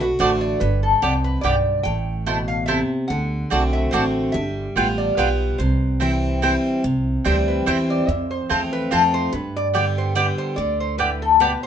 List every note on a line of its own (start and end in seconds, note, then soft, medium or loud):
0.00 0.13 B1 medium
0.00 0.19 D4 medium
0.00 0.19 F#4 medium
0.00 0.05 B4 medium
0.19 0.55 A1 medium
0.19 0.59 D3 medium
0.19 0.59 A3 medium
0.19 0.30 A3 loud
0.19 0.59 D4 medium
0.19 0.30 F#4 loud
0.19 0.60 F#4 medium
0.19 0.44 C5 medium
0.19 0.30 D5 loud
0.19 0.30 A5 loud
0.41 0.61 D5 medium
0.60 0.93 G1 medium
0.60 1.02 G2 medium
0.60 0.82 B4 loud
0.83 1.24 A4 medium
1.02 1.38 C2 medium
1.02 1.42 F2 medium
1.02 1.12 B3 medium
1.02 1.13 G4 loud
1.02 1.13 D5 loud
1.02 1.13 G5 loud
1.24 1.44 B4 loud
1.41 1.79 B1 medium
1.41 1.84 G2 medium
1.41 1.54 B3 loud
1.41 1.54 G4 loud
1.41 1.83 D5 medium
1.41 1.55 D5 medium
1.45 1.55 G5 loud
1.83 2.82 A1 medium
1.83 2.65 A2 medium
1.83 2.45 G5 loud
2.26 2.67 B2 medium
2.26 2.37 A3 medium
2.26 2.37 E4 medium
2.26 2.37 C5 medium
2.26 2.37 A5 medium
2.48 2.65 F5 loud
2.66 3.08 C3 medium
2.66 2.78 A3 medium
2.66 2.78 E4 loud
2.66 2.79 C5 loud
2.66 3.06 E5 loud
2.66 2.79 A5 loud
3.08 3.42 D2 medium
3.08 3.50 D3 medium
3.08 3.76 F#5 loud
3.50 3.87 B1 medium
3.50 3.91 D3 medium
3.50 3.92 A3 medium
3.50 3.61 C4 medium
3.50 3.92 C4 medium
3.50 3.61 F#4 medium
3.50 3.92 F#4 medium
3.50 3.61 D5 loud
3.50 3.62 A5 loud
3.73 3.93 E5 medium
3.91 4.28 A1 medium
3.91 4.33 D3 medium
3.91 4.33 A3 medium
3.91 4.03 C4 loud
3.91 4.33 C4 loud
3.91 4.03 F#4 loud
3.91 4.33 F#4 medium
3.91 4.35 C5 medium
3.91 4.03 D5 loud
3.91 4.03 A5 loud
4.32 4.66 G1 medium
4.32 4.76 G3 medium
4.32 4.94 E5 loud
4.76 5.11 A1 medium
4.76 5.16 G3 medium
4.76 4.86 B3 medium
4.76 5.16 B3 medium
4.76 4.86 F4 medium
4.76 5.17 F4 loud
4.76 4.87 B4 loud
4.76 4.87 G5 loud
4.98 5.18 D5 medium
5.17 5.53 B1 medium
5.17 5.58 G3 medium
5.17 5.28 B3 medium
5.17 5.58 B3 medium
5.17 5.28 F4 medium
5.17 5.58 F4 loud
5.17 5.56 B4 medium
5.17 5.28 B4 medium
5.17 5.28 G5 loud
5.58 6.56 C2 medium
5.58 6.39 C3 medium
5.58 6.38 C5 medium
6.00 6.41 E3 medium
6.00 6.41 G3 medium
6.00 6.10 C4 medium
6.00 6.41 C4 medium
6.00 6.11 E4 medium
6.00 6.41 E4 loud
6.00 6.11 C5 medium
6.00 6.11 G5 medium
6.42 6.82 E3 medium
6.42 6.82 G3 medium
6.42 6.52 C4 medium
6.42 6.83 C4 medium
6.42 6.53 E4 loud
6.42 6.83 E4 loud
6.42 6.53 C5 loud
6.42 6.53 G5 loud
6.84 7.16 C2 medium
6.84 7.63 C3 medium
7.24 7.61 D2 medium
7.24 7.65 E3 medium
7.24 7.65 G3 medium
7.24 7.35 C4 medium
7.24 7.65 C4 loud
7.24 7.35 E4 medium
7.24 7.66 E4 medium
7.24 7.35 C5 loud
7.24 7.48 D5 medium
7.24 7.36 G5 medium
7.48 7.66 B4 medium
7.66 8.02 E2 medium
7.66 8.07 E3 medium
7.66 8.07 G3 medium
7.66 7.77 C4 loud
7.66 8.07 C4 medium
7.66 7.77 E4 medium
7.66 8.07 E4 medium
7.66 7.77 C5 loud
7.66 7.90 C5 medium
7.66 7.77 G5 loud
7.90 8.09 D5 medium
8.08 8.40 F2 medium
8.08 8.88 F2 medium
8.08 8.31 E5 medium
8.31 8.49 C5 medium
8.49 8.86 E2 medium
8.49 8.90 A3 medium
8.49 8.60 C4 medium
8.49 8.90 C4 medium
8.49 8.60 F4 medium
8.49 8.91 F4 loud
8.49 8.72 G#4 medium
8.49 8.60 C5 loud
8.49 8.60 A5 medium
8.73 8.91 B4 loud
8.91 9.27 F2 medium
8.91 9.31 F3 medium
8.91 9.31 A3 medium
8.91 9.01 C4 medium
8.91 9.31 C4 medium
8.91 9.01 F4 medium
8.91 9.32 F4 loud
8.91 9.15 A4 medium
8.91 9.02 C5 medium
8.91 9.02 A5 loud
9.14 9.32 C5 loud
9.32 10.12 G2 medium
9.32 10.29 G2 loud
9.32 9.55 B4 medium
9.56 9.67 D5 loud
9.74 10.14 D3 medium
9.74 10.14 G3 medium
9.74 9.84 B3 medium
9.74 10.15 B3 medium
9.74 9.84 G4 medium
9.74 10.15 G4 medium
9.74 9.85 D5 medium
9.74 9.85 G5 medium
9.98 10.16 C5 medium
10.15 10.55 D3 medium
10.15 10.55 G3 medium
10.15 10.26 B3 medium
10.15 10.56 B3 medium
10.15 10.26 G4 loud
10.15 10.56 G4 medium
10.15 10.38 B4 medium
10.15 10.26 D5 loud
10.15 10.26 G5 loud
10.38 10.56 C5 medium
10.56 11.54 D2 medium
10.56 11.37 D3 medium
10.56 10.79 D5 medium
10.80 10.98 C5 medium
10.98 11.38 A2 medium
10.98 11.09 B3 medium
10.98 11.09 G4 medium
10.98 11.21 B4 medium
10.98 11.09 D5 medium
10.98 11.09 G5 loud
11.22 11.40 A4 medium
11.40 11.67 B2 medium
11.40 11.50 B3 loud
11.40 11.51 G4 loud
11.40 11.63 B4 medium
11.40 11.51 D5 medium
11.40 11.51 G5 loud
11.63 11.67 C5 medium